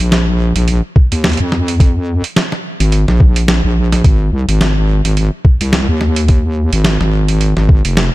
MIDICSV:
0, 0, Header, 1, 3, 480
1, 0, Start_track
1, 0, Tempo, 560748
1, 1543, Time_signature, 4, 2, 24, 8
1, 6975, End_track
2, 0, Start_track
2, 0, Title_t, "Wobble bass"
2, 0, Program_c, 0, 39
2, 0, Note_on_c, 0, 34, 102
2, 458, Note_off_c, 0, 34, 0
2, 478, Note_on_c, 0, 34, 99
2, 697, Note_off_c, 0, 34, 0
2, 958, Note_on_c, 0, 39, 95
2, 1177, Note_off_c, 0, 39, 0
2, 1199, Note_on_c, 0, 41, 99
2, 1897, Note_off_c, 0, 41, 0
2, 2398, Note_on_c, 0, 32, 94
2, 2617, Note_off_c, 0, 32, 0
2, 2638, Note_on_c, 0, 34, 97
2, 3097, Note_off_c, 0, 34, 0
2, 3117, Note_on_c, 0, 34, 97
2, 3445, Note_off_c, 0, 34, 0
2, 3461, Note_on_c, 0, 32, 94
2, 3685, Note_off_c, 0, 32, 0
2, 3702, Note_on_c, 0, 36, 100
2, 3817, Note_off_c, 0, 36, 0
2, 3838, Note_on_c, 0, 32, 103
2, 4297, Note_off_c, 0, 32, 0
2, 4319, Note_on_c, 0, 32, 94
2, 4537, Note_off_c, 0, 32, 0
2, 4800, Note_on_c, 0, 36, 96
2, 5018, Note_off_c, 0, 36, 0
2, 5038, Note_on_c, 0, 39, 94
2, 5737, Note_off_c, 0, 39, 0
2, 5759, Note_on_c, 0, 32, 102
2, 5977, Note_off_c, 0, 32, 0
2, 5999, Note_on_c, 0, 32, 101
2, 6457, Note_off_c, 0, 32, 0
2, 6480, Note_on_c, 0, 32, 102
2, 6698, Note_off_c, 0, 32, 0
2, 6719, Note_on_c, 0, 29, 98
2, 6938, Note_off_c, 0, 29, 0
2, 6975, End_track
3, 0, Start_track
3, 0, Title_t, "Drums"
3, 102, Note_on_c, 9, 38, 118
3, 102, Note_on_c, 9, 42, 57
3, 187, Note_off_c, 9, 38, 0
3, 187, Note_off_c, 9, 42, 0
3, 476, Note_on_c, 9, 42, 72
3, 562, Note_off_c, 9, 42, 0
3, 579, Note_on_c, 9, 42, 56
3, 665, Note_off_c, 9, 42, 0
3, 821, Note_on_c, 9, 36, 113
3, 906, Note_off_c, 9, 36, 0
3, 957, Note_on_c, 9, 42, 66
3, 1043, Note_off_c, 9, 42, 0
3, 1062, Note_on_c, 9, 38, 117
3, 1062, Note_on_c, 9, 42, 23
3, 1085, Note_off_c, 9, 42, 0
3, 1085, Note_on_c, 9, 42, 29
3, 1107, Note_off_c, 9, 42, 0
3, 1107, Note_on_c, 9, 42, 31
3, 1128, Note_off_c, 9, 42, 0
3, 1128, Note_on_c, 9, 42, 36
3, 1141, Note_off_c, 9, 42, 0
3, 1141, Note_on_c, 9, 42, 42
3, 1147, Note_off_c, 9, 38, 0
3, 1176, Note_off_c, 9, 42, 0
3, 1176, Note_on_c, 9, 42, 46
3, 1262, Note_off_c, 9, 42, 0
3, 1302, Note_on_c, 9, 40, 57
3, 1387, Note_off_c, 9, 40, 0
3, 1440, Note_on_c, 9, 42, 66
3, 1525, Note_off_c, 9, 42, 0
3, 1541, Note_on_c, 9, 36, 125
3, 1543, Note_on_c, 9, 42, 56
3, 1627, Note_off_c, 9, 36, 0
3, 1629, Note_off_c, 9, 42, 0
3, 1917, Note_on_c, 9, 42, 69
3, 2003, Note_off_c, 9, 42, 0
3, 2024, Note_on_c, 9, 38, 127
3, 2024, Note_on_c, 9, 42, 57
3, 2109, Note_off_c, 9, 38, 0
3, 2109, Note_off_c, 9, 42, 0
3, 2159, Note_on_c, 9, 40, 54
3, 2245, Note_off_c, 9, 40, 0
3, 2400, Note_on_c, 9, 42, 69
3, 2485, Note_off_c, 9, 42, 0
3, 2502, Note_on_c, 9, 42, 61
3, 2587, Note_off_c, 9, 42, 0
3, 2638, Note_on_c, 9, 40, 41
3, 2724, Note_off_c, 9, 40, 0
3, 2741, Note_on_c, 9, 36, 114
3, 2827, Note_off_c, 9, 36, 0
3, 2877, Note_on_c, 9, 42, 67
3, 2963, Note_off_c, 9, 42, 0
3, 2981, Note_on_c, 9, 38, 123
3, 2981, Note_on_c, 9, 42, 56
3, 3067, Note_off_c, 9, 38, 0
3, 3067, Note_off_c, 9, 42, 0
3, 3359, Note_on_c, 9, 40, 53
3, 3359, Note_on_c, 9, 42, 69
3, 3445, Note_off_c, 9, 40, 0
3, 3445, Note_off_c, 9, 42, 0
3, 3462, Note_on_c, 9, 36, 127
3, 3462, Note_on_c, 9, 42, 56
3, 3547, Note_off_c, 9, 36, 0
3, 3548, Note_off_c, 9, 42, 0
3, 3840, Note_on_c, 9, 42, 66
3, 3926, Note_off_c, 9, 42, 0
3, 3944, Note_on_c, 9, 38, 127
3, 3944, Note_on_c, 9, 42, 55
3, 4030, Note_off_c, 9, 38, 0
3, 4030, Note_off_c, 9, 42, 0
3, 4322, Note_on_c, 9, 42, 73
3, 4408, Note_off_c, 9, 42, 0
3, 4425, Note_on_c, 9, 42, 58
3, 4510, Note_off_c, 9, 42, 0
3, 4662, Note_on_c, 9, 36, 117
3, 4748, Note_off_c, 9, 36, 0
3, 4800, Note_on_c, 9, 42, 65
3, 4886, Note_off_c, 9, 42, 0
3, 4903, Note_on_c, 9, 38, 113
3, 4903, Note_on_c, 9, 42, 53
3, 4988, Note_off_c, 9, 38, 0
3, 4988, Note_off_c, 9, 42, 0
3, 5142, Note_on_c, 9, 40, 52
3, 5228, Note_off_c, 9, 40, 0
3, 5276, Note_on_c, 9, 42, 72
3, 5362, Note_off_c, 9, 42, 0
3, 5379, Note_on_c, 9, 42, 55
3, 5383, Note_on_c, 9, 36, 125
3, 5465, Note_off_c, 9, 42, 0
3, 5469, Note_off_c, 9, 36, 0
3, 5757, Note_on_c, 9, 42, 71
3, 5843, Note_off_c, 9, 42, 0
3, 5859, Note_on_c, 9, 38, 126
3, 5859, Note_on_c, 9, 42, 55
3, 5945, Note_off_c, 9, 38, 0
3, 5945, Note_off_c, 9, 42, 0
3, 5997, Note_on_c, 9, 40, 51
3, 6083, Note_off_c, 9, 40, 0
3, 6236, Note_on_c, 9, 42, 64
3, 6321, Note_off_c, 9, 42, 0
3, 6341, Note_on_c, 9, 42, 57
3, 6427, Note_off_c, 9, 42, 0
3, 6477, Note_on_c, 9, 40, 41
3, 6563, Note_off_c, 9, 40, 0
3, 6582, Note_on_c, 9, 36, 115
3, 6668, Note_off_c, 9, 36, 0
3, 6718, Note_on_c, 9, 42, 68
3, 6804, Note_off_c, 9, 42, 0
3, 6822, Note_on_c, 9, 38, 121
3, 6822, Note_on_c, 9, 42, 49
3, 6908, Note_off_c, 9, 38, 0
3, 6908, Note_off_c, 9, 42, 0
3, 6975, End_track
0, 0, End_of_file